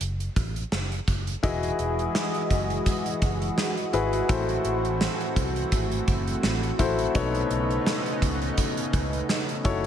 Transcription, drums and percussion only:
0.01 closed hi-hat
0.20 closed hi-hat
0.36 kick, closed hi-hat
0.56 closed hi-hat
0.72 snare
0.92 closed hi-hat
1.08 kick, closed hi-hat
1.27 closed hi-hat
1.43 kick, closed hi-hat
1.63 closed hi-hat
1.79 closed hi-hat
1.99 closed hi-hat
2.15 snare
2.34 closed hi-hat
2.50 kick, closed hi-hat
2.70 closed hi-hat
2.86 kick, closed hi-hat
3.06 closed hi-hat
3.22 kick, closed hi-hat
3.42 closed hi-hat
3.58 snare
3.77 closed hi-hat
3.93 closed hi-hat
4.13 closed hi-hat
4.29 kick, closed hi-hat
4.49 closed hi-hat
4.65 closed hi-hat
4.85 closed hi-hat
5.01 snare
5.20 closed hi-hat
5.36 kick, closed hi-hat
5.56 closed hi-hat
5.72 kick, closed hi-hat
5.92 closed hi-hat
6.08 kick, closed hi-hat
6.27 closed hi-hat
6.43 snare
6.63 closed hi-hat
6.79 kick, closed hi-hat
6.99 closed hi-hat
7.15 kick, closed hi-hat
7.35 closed hi-hat
7.51 closed hi-hat
7.71 closed hi-hat
7.86 snare
8.06 closed hi-hat
8.22 kick, closed hi-hat
8.42 closed hi-hat
8.58 kick, closed hi-hat
8.77 closed hi-hat
8.93 kick, closed hi-hat
9.13 closed hi-hat
9.29 snare
9.49 closed hi-hat
9.65 kick, closed hi-hat

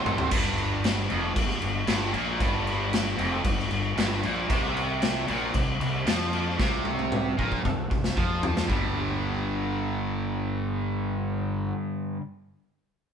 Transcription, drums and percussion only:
0.06 mid tom
0.18 floor tom
0.31 kick, crash
0.58 crash
0.84 snare, crash
1.10 crash
1.36 kick, crash
1.50 snare
1.62 crash
1.87 snare, crash
2.14 crash
2.40 kick, crash
2.67 crash
2.93 snare, crash
3.19 crash
3.44 kick, crash
3.59 snare
3.71 crash
3.98 snare, crash
4.23 crash
4.50 kick, crash
4.77 crash
5.02 snare, crash
5.28 crash
5.54 kick, crash
5.81 crash
6.07 snare, crash
6.33 crash
6.59 kick, snare
6.85 high tom
6.99 high tom
7.12 mid tom
7.39 kick
7.52 kick
7.65 kick, mid tom
7.91 kick
8.04 snare
8.17 kick
8.43 floor tom
8.57 snare
8.70 kick

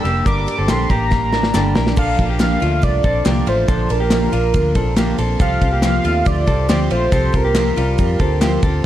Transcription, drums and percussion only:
0.05 ride
0.26 kick, ride
0.48 ride
0.68 snare, clap, ride
0.90 kick, ride
1.11 kick, snare
1.33 snare
1.43 snare
1.54 snare, clap
1.76 snare
1.87 snare
1.97 kick, crash
2.19 kick, ride
2.40 snare, clap, ride
2.62 ride
2.83 kick, ride
3.04 kick, ride
3.26 snare, clap, ride
3.47 ride
3.68 kick, ride
3.90 ride
4.10 snare, clap, ride
4.33 ride
4.54 kick, ride
4.75 kick, ride
4.97 snare, clap, ride
5.18 ride
5.40 kick, ride
5.62 kick, ride
5.82 snare, clap, ride
6.05 ride
6.26 kick, ride
6.48 kick, ride
6.69 snare, clap, ride
6.91 ride
7.12 kick, ride
7.34 kick, ride
7.55 snare, clap, ride
7.77 ride
7.99 kick, ride
8.20 kick, ride
8.41 snare, clap, ride
8.63 kick, ride

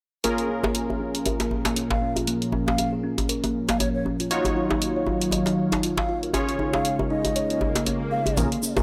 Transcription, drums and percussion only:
0.24 closed hi-hat, djembe tone
0.38 closed hi-hat
0.64 djembe slap, djembe tone
0.75 closed hi-hat
0.90 djembe tone
1.15 closed hi-hat
1.26 closed hi-hat, djembe tone
1.40 closed hi-hat, djembe slap
1.51 djembe tone
1.65 closed hi-hat, djembe slap
1.76 closed hi-hat
1.91 djembe slap, djembe tone
2.16 closed hi-hat, djembe tone
2.27 closed hi-hat
2.42 closed hi-hat
2.52 djembe tone
2.68 djembe slap
2.78 closed hi-hat, djembe tone
3.18 closed hi-hat, djembe tone
3.29 closed hi-hat
3.44 closed hi-hat, djembe tone
3.69 closed hi-hat, djembe slap
3.80 closed hi-hat, djembe tone
4.06 djembe tone
4.20 closed hi-hat
4.31 closed hi-hat
4.45 closed hi-hat, djembe tone
4.70 djembe slap, djembe tone
4.82 closed hi-hat
5.06 djembe tone
5.21 closed hi-hat
5.31 closed hi-hat, djembe tone
5.46 closed hi-hat, djembe slap
5.72 closed hi-hat, djembe slap, djembe tone
5.83 closed hi-hat
5.97 djembe slap, djembe tone
6.23 closed hi-hat
6.34 closed hi-hat, djembe tone
6.49 closed hi-hat
6.59 djembe tone
6.73 djembe slap
6.85 closed hi-hat
6.99 djembe tone
7.25 closed hi-hat, djembe tone
7.36 closed hi-hat
7.50 closed hi-hat
7.61 djembe tone
7.75 closed hi-hat, djembe slap
7.86 closed hi-hat, djembe tone
8.26 closed hi-hat, djembe tone
8.37 closed hi-hat, mid tom, djembe tone, shaker
8.52 closed hi-hat
8.63 shaker
8.77 djembe slap, djembe tone, shaker

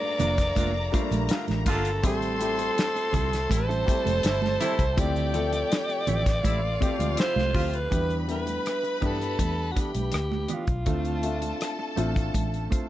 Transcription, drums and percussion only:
0.19 closed hi-hat, muted conga, low conga
0.38 kick, snare, closed hi-hat
0.56 kick, closed hi-hat, high conga
0.93 kick, closed hi-hat, muted conga
1.11 closed hi-hat, high conga
1.29 snare, closed hi-hat
1.48 snare, closed hi-hat, high conga
1.66 kick, closed hi-hat, muted conga, low conga
1.85 closed hi-hat
2.03 kick, closed hi-hat, low conga
2.22 closed hi-hat
2.40 closed hi-hat, muted conga
2.59 closed hi-hat
2.77 snare, closed hi-hat, muted conga
2.96 closed hi-hat
3.13 kick, closed hi-hat, muted conga, low conga
3.33 snare, closed hi-hat
3.49 kick, closed hi-hat, high conga
3.71 closed hi-hat
3.87 kick, closed hi-hat, muted conga
4.06 closed hi-hat, high conga
4.23 snare, closed hi-hat
4.42 snare, high conga
4.60 closed hi-hat, low conga
4.79 kick, closed hi-hat
4.97 kick, closed hi-hat, muted conga, low conga
5.16 closed hi-hat
5.34 closed hi-hat, muted conga
5.53 closed hi-hat
5.71 snare, closed hi-hat, muted conga
5.90 closed hi-hat
6.07 closed hi-hat, muted conga, low conga
6.26 kick, snare, closed hi-hat
6.44 kick, closed hi-hat, high conga
6.81 kick, closed hi-hat, muted conga
7.00 closed hi-hat, high conga
7.17 snare, closed hi-hat, muted conga
7.36 snare, high conga
7.55 kick, open hi-hat, muted conga, low conga
7.74 closed hi-hat
7.91 kick, closed hi-hat, muted conga, low conga
8.10 closed hi-hat
8.28 closed hi-hat, muted conga
8.46 closed hi-hat, high conga
8.66 cross-stick, closed hi-hat, muted conga
8.84 closed hi-hat
9.02 kick, closed hi-hat
9.21 cross-stick, closed hi-hat
9.39 kick, closed hi-hat, high conga
9.77 kick, closed hi-hat, muted conga
9.95 closed hi-hat, high conga
10.12 cross-stick, closed hi-hat
10.32 cross-stick, high conga
10.48 closed hi-hat, muted conga, low conga
10.67 kick, closed hi-hat
10.86 kick, closed hi-hat, muted conga, low conga
11.05 closed hi-hat
11.23 closed hi-hat, muted conga
11.42 closed hi-hat, high conga
11.61 cross-stick, closed hi-hat, muted conga
11.97 closed hi-hat
12.16 kick, cross-stick, closed hi-hat
12.34 kick, closed hi-hat, muted conga, high conga
12.54 closed hi-hat
12.72 kick, closed hi-hat, muted conga

